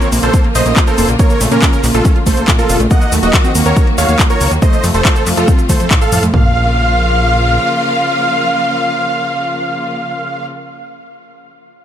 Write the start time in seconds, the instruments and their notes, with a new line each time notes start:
Already playing: string section C#3 F3 A#3 F4
0.02 synth pluck C4, closed hi-hat, shaker
0.12 analog synth bass A#1, synth pluck A#3, open hi-hat, shaker
0.23 analog synth bass A#1, synth pluck A#3, supersaw synth A4 C5, closed hi-hat, shaker
0.34 synth pluck A#3, kick, closed hi-hat, shaker
0.44 synth pluck A#3, closed hi-hat
0.55 analog synth bass A#1, synth pluck A3, supersaw synth C5 D#5, open hi-hat, shaker
0.66 analog synth bass A#1, synth pluck A#3, closed hi-hat, shaker
0.76 synth pluck F4, kick, clap, closed hi-hat, shaker
0.87 supersaw synth A4 C5, synth pluck A#4, closed hi-hat, shaker
0.98 analog synth bass F1, synth pluck A#3, open hi-hat, shaker
1.09 analog synth bass A#1, synth pluck A#3, closed hi-hat, shaker
1.19 synth pluck A#3, supersaw synth A#4 C#5, kick, closed hi-hat, shaker
1.30 synth pluck A#3, closed hi-hat, shaker
1.41 analog synth bass A#1, synth pluck A3, open hi-hat, shaker
1.51 analog synth bass A#2, synth pluck A#3, supersaw synth C#4 A#4, closed hi-hat, shaker
1.62 synth pluck F4, kick, clap, closed hi-hat, shaker
1.73 synth pluck A#4, closed hi-hat, shaker
1.84 analog synth bass A#1, synth pluck A#3, clap, open hi-hat, shaker
1.94 analog synth bass A#1, synth pluck A3, supersaw synth F4 A4, closed hi-hat, shaker
2.05 synth pluck C#4, kick, closed hi-hat, shaker
2.16 synth pluck F4, closed hi-hat
2.26 analog synth bass A#1, synth pluck A3, supersaw synth A4 C5, kick, open hi-hat, shaker
2.37 analog synth bass A#1, synth pluck A#3, closed hi-hat, shaker
2.48 synth pluck A#2, kick, clap, closed hi-hat, shaker
2.59 supersaw synth F4 A4, synth pluck A#4, closed hi-hat, shaker
2.69 analog synth bass F1, synth pluck A#2, open hi-hat, shaker
2.80 analog synth bass A#1, synth pluck A3, closed hi-hat, shaker
2.91 string section D#3 F#3 A#3 F#4, synth pluck A#3, supersaw synth D#5 F#5, kick, closed hi-hat, shaker
3.01 synth pluck A#3, closed hi-hat, shaker
3.12 analog synth bass D#2, synth pluck A3, open hi-hat, shaker
3.23 analog synth bass D#1, synth pluck A#3, supersaw synth F#4 D#5, closed hi-hat, shaker
3.34 synth pluck F4, kick, clap, closed hi-hat, shaker
3.44 synth pluck C4, closed hi-hat, shaker
3.55 analog synth bass D#2, synth pluck A#3, open hi-hat, shaker
3.66 analog synth bass D#2, synth pluck A#3, supersaw synth A#4 C#5, closed hi-hat, shaker
3.76 synth pluck A#3, kick, closed hi-hat, shaker
3.87 synth pluck A#3, closed hi-hat
3.98 analog synth bass D#2, synth pluck A3, supersaw synth C#5 F5, open hi-hat, shaker
4.09 analog synth bass D#2, synth pluck A#3, closed hi-hat, shaker
4.19 synth pluck F4, kick, clap, closed hi-hat, shaker
4.30 supersaw synth A#4 C#5, synth pluck A#4, closed hi-hat, shaker
4.41 analog synth bass C#2, synth pluck A#3, open hi-hat, shaker
4.51 analog synth bass D#2, synth pluck A#3, closed hi-hat, shaker
4.62 string section C3 F3 A3 F4, synth pluck A3, supersaw synth C5 D#5, kick, closed hi-hat, shaker
4.73 synth pluck A3, closed hi-hat, shaker
4.84 analog synth bass F2, synth pluck A3, open hi-hat, shaker
4.94 analog synth bass F1, synth pluck A3, supersaw synth A4 C5, closed hi-hat, shaker
5.05 synth pluck F4, kick, clap, closed hi-hat, shaker
5.16 synth pluck A4, closed hi-hat, shaker
5.27 analog synth bass F2, synth pluck A3, clap, open hi-hat, shaker
5.37 analog synth bass F2, synth pluck A3, supersaw synth F4 A4, closed hi-hat, shaker
5.48 synth pluck C4, kick, closed hi-hat, shaker
5.59 synth pluck F4, closed hi-hat, shaker
5.69 analog synth bass D#2, synth pluck A3, supersaw synth A4 C5, kick, open hi-hat, shaker
5.80 analog synth bass F2, synth pluck A3, closed hi-hat, shaker
5.91 synth pluck A2, kick, clap, closed hi-hat, shaker
6.02 supersaw synth A4 F5, synth pluck A4, closed hi-hat, shaker
6.12 analog synth bass F2, synth pluck A2, open hi-hat, shaker
6.23 analog synth bass F2, synth pluck A3, closed hi-hat, shaker
6.34 analog synth bass A#1, string section C#3 F3 A#3 F4, synth pluck A#3, supersaw synth F5, kick, floor tom